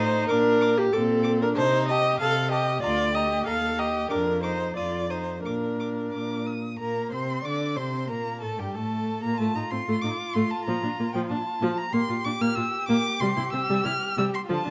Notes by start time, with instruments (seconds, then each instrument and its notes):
Already playing: cello A2, violin D#4, viola C5
0.29 cello A#2, violin D4 D6, viola A#4
0.61 violin D6
0.78 violin A#3, viola G4
0.93 cello A#2, violin C4 D6, viola A4
1.23 violin D6
1.42 violin D4, viola A#4
1.56 cello C3, violin D#4 A5, viola C5
1.88 violin G4 A5, viola D#5
2.20 cello C3, violin A4 A5, viola F5
2.51 violin G4 A5, viola D#5
2.83 cello D2, violin F4 A#5, viola D5
3.15 violin G4 A#5, viola D#5
3.46 cello D#2, violin A4 A#5, viola F5
3.78 violin G4 A#5, viola D#5
4.10 cello F2, violin D4 D6, viola A#4
4.42 violin D#4 D6, viola C5
4.76 cello F2, violin F4 D#6, viola D5
5.10 violin D#4 D#6, viola C5
5.44 cello A#2, violin D4 D6, viola A#4
5.80 violin D6
6.12 cello A#2, violin D6
6.47 violin D#6
6.79 cello A#2, viola A#3, violin A#4 A#5
7.11 cello C3, viola C4, violin C5 C6
7.44 cello D3, viola D4, violin D5 D6
7.76 cello C3, viola C4, violin C5 C6
8.09 cello A#2, viola A#3, violin A#4 A#5
8.41 cello A2, viola A3, violin A4 A5
8.59 cello G2, viola G3, violin G4 G5
8.74 cello A2, viola A3, violin A4 A5
9.23 cello A#2, viola A#3, violin A#4 A#5
9.37 cello A2, viola A3, violin F4 A5
9.55 cello A2, viola D#4, violin A#5
9.70 cello A2, viola C4, violin C6
9.87 cello A2, viola A3
10.02 cello A2, viola D#4, violin D6
10.33 cello A2, viola A3, violin C6
10.51 violin A5
10.65 cello A#2, viola F3, violin A#5
10.83 cello A#2, viola D4
10.99 cello A#2, viola A#3
11.14 cello A#2, viola F3, violin G5
11.29 cello A#2, viola D4, violin A5
11.61 cello A#2, viola F3
11.78 violin A#5
11.92 cello A#2, viola A#3, violin G4 C6
12.09 cello A#2, viola F4
12.25 cello A#2, viola D4, violin D6
12.40 cello A#2, viola A#3, violin F6
12.55 cello A#2, viola F4, violin E6
12.89 cello A#2, viola A#3, violin D6
13.20 cello C3, viola G3, violin C6
13.37 cello C3, viola E4
13.53 cello C3, viola C4, violin E6
13.69 cello C3, viola G3
13.85 cello C3, viola E4, violin F6
14.17 cello C3, viola G3, violin E6
14.34 violin C6
14.50 cello D3, viola F3, violin F4 A5
14.65 cello D3, viola D4